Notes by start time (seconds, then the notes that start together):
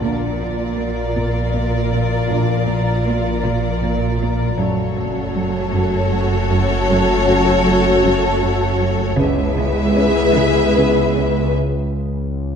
0.02 A#1 A#2 A#3 D4 F4 A#4 D5 F5 A#5
0.40 A#2
0.78 A#3
1.17 A#2
1.55 A#2
1.93 A#2
2.30 A#2 A#3 D4
2.69 A#2
3.07 A#3
3.45 A#2
3.83 A#2
4.21 A#2
4.58 F#1 F#2 A3 C#4 F#4 A4 C#5 F#5 A5
4.98 F#2
5.36 F#3
5.74 F#2
6.12 F#2
6.51 F#2
6.90 F#2
7.29 F#2
7.66 F#3
8.05 F#2
8.42 F#2
8.81 F#2
9.17 C#2 C#3 B3 E4 G#4 B4 E5 G#5
9.58 C#3
9.98 C#4
10.38 C#3
10.77 C#3
11.17 C#3